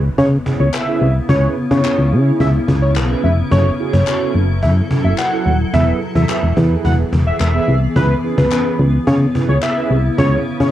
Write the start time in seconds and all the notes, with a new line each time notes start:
Already playing: C#3 B3 E4, impact
0.18 C#3 C#5, cajon bass
0.46 C#4 E4 G#4 C#5, cajon bass
0.60 C#2 C#5
0.74 E5, cajon slap, clap
0.87 C#4 E4 G#4 B4
1.01 C2
1.29 C#2 C#4 E4 G#4 B4 C#5, cajon bass
1.57 cajon slap
1.71 C#3 C#5, cajon bass
1.85 C#4 E4 G#4 B4, cajon slap, clap
1.99 C#2
2.12 C#3 C#4 E4 G#4 C#5, cajon slap
2.40 C#2 E5, cajon bass
2.68 C#2, cajon bass
2.82 C#5
2.96 B1, cajon slap, clap
3.09 C#4 E4 G#4 B4
3.23 F1 E5
3.51 F#1 F#3 C#4 E4 F#4 A4 C#5, cajon bass
3.79 C#4 E4 F#4 G#4, cajon slap
3.93 F#1 C#5, cajon bass
4.07 C#4 E4 F#4 A4, cajon slap, clap
4.34 F#1, cajon slap
4.62 F#2 E5, cajon bass
4.90 C#4 E4 F#4 A4, cajon bass
5.04 F#1 E5
5.18 F#5, cajon slap, clap
5.32 C#4 E4 F#4 A4
5.46 D#1
5.73 E1 E3 B3 E4 G#4 B4 E5, cajon bass
6.01 cajon slap
6.15 E2 E5, cajon bass
6.29 B3 E4 G#4 B4, cajon slap, clap
6.43 E1
6.57 E2 B3 E4 G#4 B4, cajon bass
6.85 E1 F#5, cajon bass
7.13 E1, cajon bass
7.27 E5
7.40 E1 E5, cajon slap, clap
7.54 B3 E4 G#4 B4
7.68 C2
7.96 C#2 C#3 C#4 E4 G#4 B4, cajon bass
8.23 C#4 E4 G#4 B4, cajon slap
8.38 C#2 B4, cajon bass
8.51 C#4 E4 G#4 B4, cajon slap, clap
8.79 C#2, cajon slap
9.07 C#3 C#5, cajon bass
9.35 C#4 E4 G#4 B4, cajon bass
9.49 C#2 C#5
9.62 E5, cajon slap, clap
9.76 C#4 E4 G#4 B4
9.90 C2
10.18 C#2 C#4 E4 G#4 C#5, cajon bass
10.46 cajon slap
10.60 C#3 C#5, cajon bass